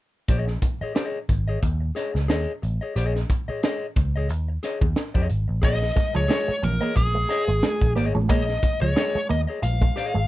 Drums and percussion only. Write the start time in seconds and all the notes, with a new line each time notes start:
0.28 kick, closed hi-hat
0.47 snare
0.62 kick, closed hi-hat
0.95 snare, closed hi-hat
1.29 kick, closed hi-hat
1.62 kick, closed hi-hat
1.96 snare, closed hi-hat
2.15 snare
2.30 snare, closed hi-hat
2.63 closed hi-hat
2.96 closed hi-hat
3.15 snare
3.30 kick, closed hi-hat
3.63 snare, closed hi-hat
3.96 kick, closed hi-hat
4.29 closed hi-hat
4.63 snare, closed hi-hat
4.81 kick
4.96 snare, closed hi-hat
5.15 kick
5.30 closed hi-hat
5.63 kick, crash
5.82 snare
5.96 kick, closed hi-hat
6.29 snare, closed hi-hat, high conga
6.63 closed hi-hat, muted conga, low conga
6.96 kick, closed hi-hat, muted conga
7.30 snare, closed hi-hat
7.63 snare, closed hi-hat, high conga
7.81 kick
7.97 closed hi-hat
8.15 high conga
8.30 kick, closed hi-hat
8.49 snare
8.63 kick, closed hi-hat, muted conga
8.96 snare, closed hi-hat, high conga
9.29 closed hi-hat, muted conga
9.63 closed hi-hat, muted conga
9.82 kick
9.97 snare, closed hi-hat